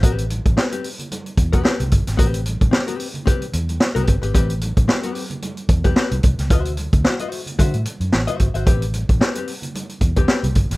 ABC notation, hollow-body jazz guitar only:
X:1
M:4/4
L:1/16
Q:"Swing 16ths" 1/4=111
K:Ador
V:1 name="Hollow-body jazz guitar"
[CGB] z3 [CGB] [CGB] z4 z [CGB] [CGB] z3 | [CGB] z3 [CGc] [CGB] z2 [CGB] z4 [CGB] z [CGB] | [CGB] z3 [CGB] [CGB] z4 z [CGB] [CGB] z3 | [Fce] z3 [Fcf] [Fce] z2 [Fce] z4 [Fce] z [Fce] |
[CGB] z3 [CGB] [CGB] z4 z [CGB] [CGB] z3 |]